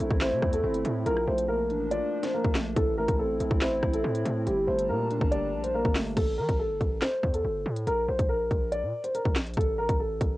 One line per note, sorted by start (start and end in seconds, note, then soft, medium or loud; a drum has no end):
0.00 0.42 E3 medium
0.00 0.64 A3 medium
0.00 1.05 A3 medium
0.00 0.62 C4 medium
0.00 1.05 C4 medium
0.00 1.05 E4 medium
0.00 1.06 E4 loud
0.00 0.18 A4 medium
0.10 0.33 A1 loud
0.10 kick loud
0.21 0.51 C5 medium
0.21 1.06 E5 medium
0.21 snare loud
0.21 clap medium
0.21 closed hi-hat medium
0.32 0.42 C3 loud
0.42 0.63 E2 loud
0.42 kick medium
0.42 cross-stick medium
0.53 1.03 A4 medium
0.53 closed hi-hat medium
0.64 0.84 G1 loud
0.64 1.06 C4 loud
0.74 closed hi-hat medium
0.85 1.05 A2 loud
0.85 1.06 A3 medium
0.85 closed hi-hat medium
1.06 1.27 A#1 loud
1.06 2.75 F3 medium
1.06 2.13 F3 medium
1.06 2.75 D4 medium
1.06 1.22 A#4 medium
1.06 closed hi-hat medium
1.17 cross-stick medium
1.27 1.72 A#1 loud
1.27 2.34 A3 medium
1.27 1.44 C5 medium
1.38 closed hi-hat medium
1.48 2.32 A#3 medium
1.48 1.89 A#4 medium
1.70 2.00 A1 loud
1.70 2.76 D4 medium
1.70 closed hi-hat medium
1.91 2.76 F4 medium
1.91 2.21 D5 medium
1.91 closed hi-hat medium
2.23 2.31 C5 medium
2.23 snare medium
2.23 closed hi-hat medium
2.34 2.76 A#3 loud
2.34 2.50 A#4 medium
2.44 2.75 A#1 loud
2.44 kick loud
2.55 2.76 A3 medium
2.55 snare loud
2.55 clap medium
2.55 closed hi-hat medium
2.76 3.07 A1 loud
2.76 3.83 E3 loud
2.76 4.45 C4 medium
2.76 4.45 E4 medium
2.76 2.92 A4 medium
2.76 kick loud
2.76 closed hi-hat medium
2.98 4.04 A3 medium
2.98 3.14 A#4 medium
3.08 3.39 A1 loud
3.08 kick loud
3.08 closed hi-hat medium
3.19 4.02 C4 medium
3.19 3.59 A4 medium
3.40 3.50 A1 loud
3.40 4.47 E4 medium
3.40 closed hi-hat medium
3.51 3.82 A1 loud
3.51 kick loud
3.61 3.91 C5 medium
3.61 4.47 E5 medium
3.61 snare loud
3.61 clap medium
3.61 closed hi-hat medium
3.83 4.03 A1 loud
3.83 kick medium
3.83 cross-stick medium
3.93 4.44 A4 medium
3.93 closed hi-hat medium
4.04 4.25 A2 loud
4.04 4.47 C4 loud
4.15 closed hi-hat medium
4.25 4.46 A2 loud
4.25 4.47 A3 medium
4.25 closed hi-hat medium
4.46 4.67 G1 loud
4.46 5.53 G3 medium
4.46 6.15 G3 medium
4.46 6.15 D4 medium
4.46 4.62 G4 medium
4.46 6.15 A5 medium
4.46 6.15 A#5 medium
4.46 closed hi-hat medium
4.67 4.91 G1 loud
4.67 5.74 A3 medium
4.67 4.83 C5 medium
4.79 closed hi-hat medium
4.89 5.20 A#2 loud
4.89 5.73 A#3 medium
4.89 5.29 A#4 medium
5.10 6.17 D4 loud
5.10 closed hi-hat medium
5.21 5.55 G1 loud
5.21 kick loud
5.31 6.17 G4 medium
5.31 5.62 D5 medium
5.31 closed hi-hat medium
5.53 5.83 A#1 loud
5.64 5.72 C5 medium
5.64 closed hi-hat medium
5.74 6.17 A#3 loud
5.74 5.90 A#4 medium
5.85 6.16 G1 loud
5.85 kick loud
5.95 6.17 A3 medium
5.95 snare loud
5.95 clap medium
5.95 open hi-hat medium
6.17 6.40 A1 loud
6.17 6.33 A4 medium
6.17 kick loud
6.17 closed hi-hat medium
6.17 crash medium
6.38 6.48 E3 loud
6.38 6.54 A#4 medium
6.49 6.72 A1 loud
6.49 kick medium
6.49 closed hi-hat medium
6.59 6.99 A4 medium
6.70 6.80 G1 loud
6.81 7.01 A1 loud
6.81 kick medium
6.81 closed hi-hat medium
7.01 7.32 C5 medium
7.01 snare loud
7.01 clap medium
7.01 closed hi-hat medium
7.23 7.44 E2 loud
7.23 kick medium
7.34 7.84 A4 medium
7.34 closed hi-hat medium
7.45 7.65 G1 loud
7.66 7.86 A2 loud
7.76 closed hi-hat medium
7.87 8.07 A#1 loud
7.87 8.03 A#4 medium
7.87 closed hi-hat medium
8.08 8.19 A#1 loud
8.08 8.24 C5 medium
8.19 8.50 A#1 loud
8.19 kick medium
8.19 closed hi-hat medium
8.29 8.69 A#4 medium
8.51 8.84 A#1 loud
8.51 kick medium
8.51 closed hi-hat medium
8.72 9.02 D5 medium
8.72 closed hi-hat medium
8.83 8.93 A#2 loud
9.04 9.12 C5 medium
9.04 closed hi-hat medium
9.15 9.31 A#4 medium
9.15 closed hi-hat medium
9.25 9.56 A#1 loud
9.25 kick medium
9.36 snare loud
9.36 clap medium
9.36 closed hi-hat medium
9.47 closed hi-hat soft
9.54 9.88 A1 loud
9.54 9.73 A4 loud
9.54 kick loud
9.54 closed hi-hat medium
9.61 closed hi-hat medium
9.78 9.94 A#4 medium
9.89 10.20 A1 loud
9.89 kick medium
9.89 closed hi-hat medium
10.00 10.37 A4 medium
10.21 10.37 A1 loud
10.21 kick medium
10.21 closed hi-hat medium